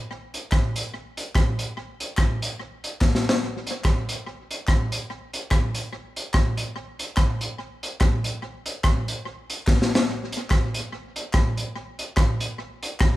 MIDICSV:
0, 0, Header, 1, 2, 480
1, 0, Start_track
1, 0, Tempo, 416089
1, 122, Time_signature, 4, 2, 24, 8
1, 15189, End_track
2, 0, Start_track
2, 0, Title_t, "Drums"
2, 392, Note_on_c, 9, 42, 85
2, 507, Note_off_c, 9, 42, 0
2, 594, Note_on_c, 9, 39, 91
2, 601, Note_on_c, 9, 37, 97
2, 602, Note_on_c, 9, 36, 104
2, 709, Note_off_c, 9, 39, 0
2, 717, Note_off_c, 9, 36, 0
2, 717, Note_off_c, 9, 37, 0
2, 874, Note_on_c, 9, 42, 100
2, 989, Note_off_c, 9, 42, 0
2, 1354, Note_on_c, 9, 42, 84
2, 1469, Note_off_c, 9, 42, 0
2, 1561, Note_on_c, 9, 36, 116
2, 1561, Note_on_c, 9, 39, 95
2, 1563, Note_on_c, 9, 37, 114
2, 1676, Note_off_c, 9, 36, 0
2, 1676, Note_off_c, 9, 39, 0
2, 1678, Note_off_c, 9, 37, 0
2, 1833, Note_on_c, 9, 42, 90
2, 1948, Note_off_c, 9, 42, 0
2, 2311, Note_on_c, 9, 42, 83
2, 2426, Note_off_c, 9, 42, 0
2, 2506, Note_on_c, 9, 39, 96
2, 2514, Note_on_c, 9, 37, 101
2, 2516, Note_on_c, 9, 36, 104
2, 2621, Note_off_c, 9, 39, 0
2, 2629, Note_off_c, 9, 37, 0
2, 2631, Note_off_c, 9, 36, 0
2, 2796, Note_on_c, 9, 42, 98
2, 2911, Note_off_c, 9, 42, 0
2, 3275, Note_on_c, 9, 42, 75
2, 3390, Note_off_c, 9, 42, 0
2, 3472, Note_on_c, 9, 39, 94
2, 3476, Note_on_c, 9, 36, 114
2, 3478, Note_on_c, 9, 38, 53
2, 3588, Note_off_c, 9, 39, 0
2, 3591, Note_off_c, 9, 36, 0
2, 3593, Note_off_c, 9, 38, 0
2, 3633, Note_on_c, 9, 38, 71
2, 3749, Note_off_c, 9, 38, 0
2, 3796, Note_on_c, 9, 38, 106
2, 3912, Note_off_c, 9, 38, 0
2, 4230, Note_on_c, 9, 42, 89
2, 4345, Note_off_c, 9, 42, 0
2, 4431, Note_on_c, 9, 39, 94
2, 4439, Note_on_c, 9, 36, 98
2, 4440, Note_on_c, 9, 37, 97
2, 4546, Note_off_c, 9, 39, 0
2, 4555, Note_off_c, 9, 36, 0
2, 4555, Note_off_c, 9, 37, 0
2, 4716, Note_on_c, 9, 42, 96
2, 4831, Note_off_c, 9, 42, 0
2, 5198, Note_on_c, 9, 42, 83
2, 5313, Note_off_c, 9, 42, 0
2, 5391, Note_on_c, 9, 39, 90
2, 5402, Note_on_c, 9, 36, 110
2, 5404, Note_on_c, 9, 37, 105
2, 5507, Note_off_c, 9, 39, 0
2, 5517, Note_off_c, 9, 36, 0
2, 5519, Note_off_c, 9, 37, 0
2, 5676, Note_on_c, 9, 42, 92
2, 5791, Note_off_c, 9, 42, 0
2, 6154, Note_on_c, 9, 42, 92
2, 6270, Note_off_c, 9, 42, 0
2, 6356, Note_on_c, 9, 37, 100
2, 6358, Note_on_c, 9, 39, 86
2, 6360, Note_on_c, 9, 36, 94
2, 6472, Note_off_c, 9, 37, 0
2, 6473, Note_off_c, 9, 39, 0
2, 6476, Note_off_c, 9, 36, 0
2, 6628, Note_on_c, 9, 42, 96
2, 6743, Note_off_c, 9, 42, 0
2, 7111, Note_on_c, 9, 42, 80
2, 7226, Note_off_c, 9, 42, 0
2, 7308, Note_on_c, 9, 39, 93
2, 7315, Note_on_c, 9, 37, 110
2, 7317, Note_on_c, 9, 36, 118
2, 7423, Note_off_c, 9, 39, 0
2, 7431, Note_off_c, 9, 37, 0
2, 7433, Note_off_c, 9, 36, 0
2, 7584, Note_on_c, 9, 42, 88
2, 7699, Note_off_c, 9, 42, 0
2, 8068, Note_on_c, 9, 42, 89
2, 8183, Note_off_c, 9, 42, 0
2, 8266, Note_on_c, 9, 39, 92
2, 8270, Note_on_c, 9, 37, 98
2, 8276, Note_on_c, 9, 36, 96
2, 8382, Note_off_c, 9, 39, 0
2, 8385, Note_off_c, 9, 37, 0
2, 8392, Note_off_c, 9, 36, 0
2, 8547, Note_on_c, 9, 42, 100
2, 8663, Note_off_c, 9, 42, 0
2, 9033, Note_on_c, 9, 42, 81
2, 9148, Note_off_c, 9, 42, 0
2, 9235, Note_on_c, 9, 39, 96
2, 9236, Note_on_c, 9, 37, 110
2, 9238, Note_on_c, 9, 36, 118
2, 9350, Note_off_c, 9, 39, 0
2, 9352, Note_off_c, 9, 37, 0
2, 9354, Note_off_c, 9, 36, 0
2, 9509, Note_on_c, 9, 42, 89
2, 9624, Note_off_c, 9, 42, 0
2, 9986, Note_on_c, 9, 42, 90
2, 10102, Note_off_c, 9, 42, 0
2, 10196, Note_on_c, 9, 37, 108
2, 10199, Note_on_c, 9, 39, 94
2, 10200, Note_on_c, 9, 36, 105
2, 10312, Note_off_c, 9, 37, 0
2, 10315, Note_off_c, 9, 36, 0
2, 10315, Note_off_c, 9, 39, 0
2, 10476, Note_on_c, 9, 42, 101
2, 10592, Note_off_c, 9, 42, 0
2, 10956, Note_on_c, 9, 42, 81
2, 11071, Note_off_c, 9, 42, 0
2, 11154, Note_on_c, 9, 39, 97
2, 11162, Note_on_c, 9, 36, 117
2, 11162, Note_on_c, 9, 38, 56
2, 11270, Note_off_c, 9, 39, 0
2, 11278, Note_off_c, 9, 36, 0
2, 11278, Note_off_c, 9, 38, 0
2, 11328, Note_on_c, 9, 38, 75
2, 11443, Note_off_c, 9, 38, 0
2, 11481, Note_on_c, 9, 38, 102
2, 11596, Note_off_c, 9, 38, 0
2, 11910, Note_on_c, 9, 42, 91
2, 12025, Note_off_c, 9, 42, 0
2, 12114, Note_on_c, 9, 39, 94
2, 12122, Note_on_c, 9, 36, 106
2, 12122, Note_on_c, 9, 37, 102
2, 12229, Note_off_c, 9, 39, 0
2, 12237, Note_off_c, 9, 36, 0
2, 12237, Note_off_c, 9, 37, 0
2, 12395, Note_on_c, 9, 42, 97
2, 12510, Note_off_c, 9, 42, 0
2, 12873, Note_on_c, 9, 42, 83
2, 12988, Note_off_c, 9, 42, 0
2, 13071, Note_on_c, 9, 39, 95
2, 13081, Note_on_c, 9, 37, 113
2, 13083, Note_on_c, 9, 36, 113
2, 13186, Note_off_c, 9, 39, 0
2, 13196, Note_off_c, 9, 37, 0
2, 13198, Note_off_c, 9, 36, 0
2, 13352, Note_on_c, 9, 42, 89
2, 13467, Note_off_c, 9, 42, 0
2, 13830, Note_on_c, 9, 42, 87
2, 13946, Note_off_c, 9, 42, 0
2, 14036, Note_on_c, 9, 37, 99
2, 14037, Note_on_c, 9, 39, 95
2, 14041, Note_on_c, 9, 36, 102
2, 14151, Note_off_c, 9, 37, 0
2, 14152, Note_off_c, 9, 39, 0
2, 14156, Note_off_c, 9, 36, 0
2, 14310, Note_on_c, 9, 42, 96
2, 14426, Note_off_c, 9, 42, 0
2, 14796, Note_on_c, 9, 42, 85
2, 14912, Note_off_c, 9, 42, 0
2, 14993, Note_on_c, 9, 39, 95
2, 15003, Note_on_c, 9, 37, 116
2, 15005, Note_on_c, 9, 36, 116
2, 15108, Note_off_c, 9, 39, 0
2, 15118, Note_off_c, 9, 37, 0
2, 15120, Note_off_c, 9, 36, 0
2, 15189, End_track
0, 0, End_of_file